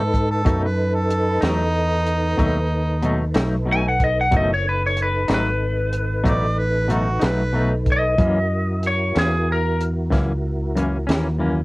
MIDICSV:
0, 0, Header, 1, 7, 480
1, 0, Start_track
1, 0, Tempo, 643777
1, 342, Time_signature, 12, 3, 24, 8
1, 8683, End_track
2, 0, Start_track
2, 0, Title_t, "Lead electric guitar"
2, 0, Program_c, 0, 29
2, 2777, Note_on_c, 0, 80, 76
2, 2877, Note_off_c, 0, 80, 0
2, 2896, Note_on_c, 0, 78, 67
2, 2996, Note_off_c, 0, 78, 0
2, 3010, Note_on_c, 0, 75, 72
2, 3113, Note_off_c, 0, 75, 0
2, 3137, Note_on_c, 0, 78, 67
2, 3237, Note_off_c, 0, 78, 0
2, 3255, Note_on_c, 0, 75, 56
2, 3356, Note_off_c, 0, 75, 0
2, 3383, Note_on_c, 0, 73, 65
2, 3480, Note_off_c, 0, 73, 0
2, 3496, Note_on_c, 0, 71, 58
2, 3597, Note_off_c, 0, 71, 0
2, 3628, Note_on_c, 0, 73, 58
2, 3723, Note_off_c, 0, 73, 0
2, 3746, Note_on_c, 0, 71, 58
2, 3959, Note_off_c, 0, 71, 0
2, 3982, Note_on_c, 0, 71, 64
2, 4896, Note_off_c, 0, 71, 0
2, 5904, Note_on_c, 0, 75, 68
2, 6584, Note_off_c, 0, 75, 0
2, 6615, Note_on_c, 0, 73, 68
2, 6834, Note_off_c, 0, 73, 0
2, 6849, Note_on_c, 0, 68, 65
2, 7071, Note_off_c, 0, 68, 0
2, 7100, Note_on_c, 0, 70, 67
2, 7316, Note_off_c, 0, 70, 0
2, 8683, End_track
3, 0, Start_track
3, 0, Title_t, "Harmonica"
3, 0, Program_c, 1, 22
3, 0, Note_on_c, 1, 69, 82
3, 195, Note_off_c, 1, 69, 0
3, 228, Note_on_c, 1, 69, 65
3, 458, Note_off_c, 1, 69, 0
3, 481, Note_on_c, 1, 71, 63
3, 707, Note_on_c, 1, 69, 66
3, 719, Note_off_c, 1, 71, 0
3, 1062, Note_on_c, 1, 63, 84
3, 1074, Note_off_c, 1, 69, 0
3, 2473, Note_off_c, 1, 63, 0
3, 4674, Note_on_c, 1, 74, 75
3, 4914, Note_on_c, 1, 71, 71
3, 4925, Note_off_c, 1, 74, 0
3, 5159, Note_on_c, 1, 66, 63
3, 5170, Note_off_c, 1, 71, 0
3, 5400, Note_on_c, 1, 71, 76
3, 5411, Note_off_c, 1, 66, 0
3, 5742, Note_off_c, 1, 71, 0
3, 8683, End_track
4, 0, Start_track
4, 0, Title_t, "Tonewheel organ"
4, 0, Program_c, 2, 16
4, 0, Note_on_c, 2, 63, 52
4, 0, Note_on_c, 2, 69, 51
4, 0, Note_on_c, 2, 71, 56
4, 312, Note_off_c, 2, 63, 0
4, 312, Note_off_c, 2, 69, 0
4, 314, Note_off_c, 2, 71, 0
4, 338, Note_on_c, 2, 69, 58
4, 342, Note_on_c, 2, 63, 57
4, 344, Note_on_c, 2, 71, 58
4, 3192, Note_off_c, 2, 69, 0
4, 3194, Note_off_c, 2, 63, 0
4, 3195, Note_off_c, 2, 71, 0
4, 3233, Note_on_c, 2, 72, 49
4, 3235, Note_on_c, 2, 70, 49
4, 3237, Note_on_c, 2, 64, 51
4, 3455, Note_on_c, 2, 69, 56
4, 3458, Note_on_c, 2, 71, 52
4, 3462, Note_on_c, 2, 63, 51
4, 3468, Note_off_c, 2, 72, 0
4, 3469, Note_off_c, 2, 70, 0
4, 3470, Note_off_c, 2, 64, 0
4, 6076, Note_off_c, 2, 69, 0
4, 6077, Note_off_c, 2, 71, 0
4, 6079, Note_off_c, 2, 63, 0
4, 6104, Note_on_c, 2, 64, 51
4, 6105, Note_on_c, 2, 66, 54
4, 8683, Note_off_c, 2, 64, 0
4, 8683, Note_off_c, 2, 66, 0
4, 8683, End_track
5, 0, Start_track
5, 0, Title_t, "Clean electric guitar"
5, 0, Program_c, 3, 27
5, 335, Note_on_c, 3, 47, 68
5, 345, Note_on_c, 3, 54, 79
5, 347, Note_on_c, 3, 63, 81
5, 350, Note_on_c, 3, 57, 78
5, 483, Note_off_c, 3, 47, 0
5, 487, Note_off_c, 3, 54, 0
5, 488, Note_off_c, 3, 63, 0
5, 490, Note_off_c, 3, 57, 0
5, 1051, Note_on_c, 3, 63, 50
5, 1071, Note_on_c, 3, 57, 46
5, 1078, Note_on_c, 3, 54, 44
5, 1200, Note_off_c, 3, 63, 0
5, 1210, Note_off_c, 3, 57, 0
5, 1214, Note_off_c, 3, 54, 0
5, 1770, Note_on_c, 3, 47, 67
5, 1777, Note_on_c, 3, 54, 71
5, 1783, Note_on_c, 3, 57, 80
5, 1785, Note_on_c, 3, 63, 81
5, 1920, Note_off_c, 3, 47, 0
5, 1923, Note_off_c, 3, 54, 0
5, 1926, Note_off_c, 3, 57, 0
5, 1928, Note_off_c, 3, 63, 0
5, 2255, Note_on_c, 3, 47, 59
5, 2260, Note_on_c, 3, 54, 55
5, 2273, Note_on_c, 3, 57, 64
5, 2277, Note_on_c, 3, 63, 65
5, 2403, Note_off_c, 3, 47, 0
5, 2405, Note_off_c, 3, 54, 0
5, 2412, Note_off_c, 3, 57, 0
5, 2414, Note_off_c, 3, 63, 0
5, 2492, Note_on_c, 3, 63, 51
5, 2504, Note_on_c, 3, 57, 45
5, 2515, Note_on_c, 3, 54, 41
5, 2642, Note_off_c, 3, 63, 0
5, 2647, Note_off_c, 3, 57, 0
5, 2653, Note_off_c, 3, 54, 0
5, 2726, Note_on_c, 3, 47, 52
5, 2736, Note_on_c, 3, 54, 52
5, 2747, Note_on_c, 3, 57, 53
5, 2747, Note_on_c, 3, 63, 58
5, 2878, Note_off_c, 3, 47, 0
5, 2883, Note_off_c, 3, 54, 0
5, 2889, Note_off_c, 3, 57, 0
5, 2889, Note_off_c, 3, 63, 0
5, 3216, Note_on_c, 3, 47, 66
5, 3224, Note_on_c, 3, 54, 66
5, 3230, Note_on_c, 3, 57, 71
5, 3233, Note_on_c, 3, 63, 71
5, 3364, Note_off_c, 3, 47, 0
5, 3368, Note_off_c, 3, 54, 0
5, 3371, Note_off_c, 3, 57, 0
5, 3372, Note_off_c, 3, 63, 0
5, 3938, Note_on_c, 3, 63, 45
5, 3951, Note_on_c, 3, 57, 39
5, 3963, Note_on_c, 3, 54, 34
5, 4085, Note_off_c, 3, 63, 0
5, 4092, Note_off_c, 3, 57, 0
5, 4098, Note_off_c, 3, 54, 0
5, 4651, Note_on_c, 3, 47, 72
5, 4653, Note_on_c, 3, 54, 66
5, 4661, Note_on_c, 3, 57, 71
5, 4670, Note_on_c, 3, 63, 77
5, 4802, Note_off_c, 3, 47, 0
5, 4803, Note_off_c, 3, 54, 0
5, 4807, Note_off_c, 3, 57, 0
5, 4812, Note_off_c, 3, 63, 0
5, 5130, Note_on_c, 3, 47, 51
5, 5138, Note_on_c, 3, 54, 51
5, 5145, Note_on_c, 3, 57, 61
5, 5156, Note_on_c, 3, 63, 57
5, 5282, Note_off_c, 3, 47, 0
5, 5286, Note_off_c, 3, 54, 0
5, 5290, Note_off_c, 3, 57, 0
5, 5295, Note_off_c, 3, 63, 0
5, 5365, Note_on_c, 3, 63, 44
5, 5381, Note_on_c, 3, 57, 41
5, 5393, Note_on_c, 3, 54, 43
5, 5519, Note_off_c, 3, 63, 0
5, 5528, Note_off_c, 3, 57, 0
5, 5534, Note_off_c, 3, 54, 0
5, 5613, Note_on_c, 3, 47, 55
5, 5620, Note_on_c, 3, 54, 56
5, 5630, Note_on_c, 3, 57, 57
5, 5637, Note_on_c, 3, 63, 55
5, 5763, Note_off_c, 3, 47, 0
5, 5767, Note_off_c, 3, 54, 0
5, 5772, Note_off_c, 3, 57, 0
5, 5775, Note_off_c, 3, 63, 0
5, 6100, Note_on_c, 3, 42, 62
5, 6107, Note_on_c, 3, 52, 62
5, 6113, Note_on_c, 3, 58, 65
5, 6116, Note_on_c, 3, 61, 66
5, 6247, Note_off_c, 3, 42, 0
5, 6251, Note_off_c, 3, 52, 0
5, 6253, Note_off_c, 3, 58, 0
5, 6255, Note_off_c, 3, 61, 0
5, 6824, Note_on_c, 3, 61, 47
5, 6834, Note_on_c, 3, 58, 35
5, 6843, Note_on_c, 3, 52, 34
5, 6969, Note_off_c, 3, 61, 0
5, 6974, Note_off_c, 3, 58, 0
5, 6979, Note_off_c, 3, 52, 0
5, 7534, Note_on_c, 3, 42, 67
5, 7542, Note_on_c, 3, 52, 66
5, 7547, Note_on_c, 3, 58, 71
5, 7548, Note_on_c, 3, 61, 73
5, 7684, Note_off_c, 3, 42, 0
5, 7688, Note_off_c, 3, 52, 0
5, 7690, Note_off_c, 3, 58, 0
5, 7691, Note_off_c, 3, 61, 0
5, 8018, Note_on_c, 3, 42, 54
5, 8029, Note_on_c, 3, 52, 54
5, 8032, Note_on_c, 3, 58, 58
5, 8045, Note_on_c, 3, 61, 66
5, 8166, Note_off_c, 3, 42, 0
5, 8171, Note_off_c, 3, 52, 0
5, 8172, Note_off_c, 3, 58, 0
5, 8179, Note_off_c, 3, 61, 0
5, 8252, Note_on_c, 3, 61, 48
5, 8266, Note_on_c, 3, 58, 43
5, 8278, Note_on_c, 3, 52, 39
5, 8402, Note_off_c, 3, 61, 0
5, 8409, Note_off_c, 3, 58, 0
5, 8416, Note_off_c, 3, 52, 0
5, 8488, Note_on_c, 3, 42, 50
5, 8496, Note_on_c, 3, 52, 50
5, 8501, Note_on_c, 3, 58, 60
5, 8509, Note_on_c, 3, 61, 57
5, 8640, Note_off_c, 3, 42, 0
5, 8644, Note_off_c, 3, 52, 0
5, 8646, Note_off_c, 3, 58, 0
5, 8651, Note_off_c, 3, 61, 0
5, 8683, End_track
6, 0, Start_track
6, 0, Title_t, "Fingered electric bass"
6, 0, Program_c, 4, 33
6, 0, Note_on_c, 4, 44, 66
6, 319, Note_off_c, 4, 44, 0
6, 339, Note_on_c, 4, 42, 67
6, 1039, Note_off_c, 4, 42, 0
6, 1062, Note_on_c, 4, 40, 75
6, 1761, Note_off_c, 4, 40, 0
6, 1780, Note_on_c, 4, 39, 70
6, 2480, Note_off_c, 4, 39, 0
6, 2500, Note_on_c, 4, 35, 73
6, 3200, Note_off_c, 4, 35, 0
6, 3225, Note_on_c, 4, 30, 69
6, 3923, Note_off_c, 4, 30, 0
6, 3945, Note_on_c, 4, 32, 73
6, 4644, Note_off_c, 4, 32, 0
6, 4664, Note_on_c, 4, 33, 68
6, 5363, Note_off_c, 4, 33, 0
6, 5386, Note_on_c, 4, 35, 69
6, 6085, Note_off_c, 4, 35, 0
6, 6105, Note_on_c, 4, 42, 62
6, 6804, Note_off_c, 4, 42, 0
6, 6831, Note_on_c, 4, 40, 73
6, 7527, Note_off_c, 4, 40, 0
6, 7546, Note_on_c, 4, 37, 63
6, 8243, Note_off_c, 4, 37, 0
6, 8266, Note_on_c, 4, 39, 70
6, 8683, Note_off_c, 4, 39, 0
6, 8683, End_track
7, 0, Start_track
7, 0, Title_t, "Drums"
7, 103, Note_on_c, 9, 36, 61
7, 108, Note_on_c, 9, 42, 48
7, 178, Note_off_c, 9, 36, 0
7, 183, Note_off_c, 9, 42, 0
7, 341, Note_on_c, 9, 42, 66
7, 342, Note_on_c, 9, 36, 82
7, 416, Note_off_c, 9, 36, 0
7, 416, Note_off_c, 9, 42, 0
7, 823, Note_on_c, 9, 42, 54
7, 898, Note_off_c, 9, 42, 0
7, 1058, Note_on_c, 9, 42, 63
7, 1069, Note_on_c, 9, 38, 84
7, 1133, Note_off_c, 9, 42, 0
7, 1143, Note_off_c, 9, 38, 0
7, 1539, Note_on_c, 9, 42, 43
7, 1614, Note_off_c, 9, 42, 0
7, 1780, Note_on_c, 9, 36, 60
7, 1782, Note_on_c, 9, 42, 60
7, 1855, Note_off_c, 9, 36, 0
7, 1856, Note_off_c, 9, 42, 0
7, 2255, Note_on_c, 9, 42, 41
7, 2330, Note_off_c, 9, 42, 0
7, 2492, Note_on_c, 9, 42, 63
7, 2503, Note_on_c, 9, 38, 88
7, 2567, Note_off_c, 9, 42, 0
7, 2577, Note_off_c, 9, 38, 0
7, 2982, Note_on_c, 9, 36, 58
7, 2982, Note_on_c, 9, 42, 47
7, 3056, Note_off_c, 9, 42, 0
7, 3057, Note_off_c, 9, 36, 0
7, 3219, Note_on_c, 9, 42, 62
7, 3222, Note_on_c, 9, 36, 85
7, 3294, Note_off_c, 9, 42, 0
7, 3296, Note_off_c, 9, 36, 0
7, 3704, Note_on_c, 9, 42, 49
7, 3779, Note_off_c, 9, 42, 0
7, 3938, Note_on_c, 9, 42, 66
7, 3948, Note_on_c, 9, 38, 83
7, 4013, Note_off_c, 9, 42, 0
7, 4023, Note_off_c, 9, 38, 0
7, 4419, Note_on_c, 9, 42, 48
7, 4494, Note_off_c, 9, 42, 0
7, 4663, Note_on_c, 9, 36, 61
7, 4664, Note_on_c, 9, 42, 65
7, 4738, Note_off_c, 9, 36, 0
7, 4739, Note_off_c, 9, 42, 0
7, 5144, Note_on_c, 9, 42, 48
7, 5218, Note_off_c, 9, 42, 0
7, 5378, Note_on_c, 9, 42, 68
7, 5389, Note_on_c, 9, 38, 86
7, 5453, Note_off_c, 9, 42, 0
7, 5463, Note_off_c, 9, 38, 0
7, 5862, Note_on_c, 9, 36, 60
7, 5862, Note_on_c, 9, 42, 44
7, 5936, Note_off_c, 9, 36, 0
7, 5936, Note_off_c, 9, 42, 0
7, 6103, Note_on_c, 9, 36, 84
7, 6103, Note_on_c, 9, 42, 61
7, 6177, Note_off_c, 9, 36, 0
7, 6177, Note_off_c, 9, 42, 0
7, 6584, Note_on_c, 9, 42, 51
7, 6658, Note_off_c, 9, 42, 0
7, 6828, Note_on_c, 9, 42, 61
7, 6838, Note_on_c, 9, 38, 90
7, 6902, Note_off_c, 9, 42, 0
7, 6913, Note_off_c, 9, 38, 0
7, 7312, Note_on_c, 9, 42, 45
7, 7386, Note_off_c, 9, 42, 0
7, 7546, Note_on_c, 9, 36, 62
7, 7550, Note_on_c, 9, 42, 64
7, 7560, Note_on_c, 9, 38, 23
7, 7621, Note_off_c, 9, 36, 0
7, 7624, Note_off_c, 9, 42, 0
7, 7635, Note_off_c, 9, 38, 0
7, 8029, Note_on_c, 9, 42, 49
7, 8103, Note_off_c, 9, 42, 0
7, 8267, Note_on_c, 9, 42, 66
7, 8278, Note_on_c, 9, 38, 84
7, 8342, Note_off_c, 9, 42, 0
7, 8352, Note_off_c, 9, 38, 0
7, 8683, End_track
0, 0, End_of_file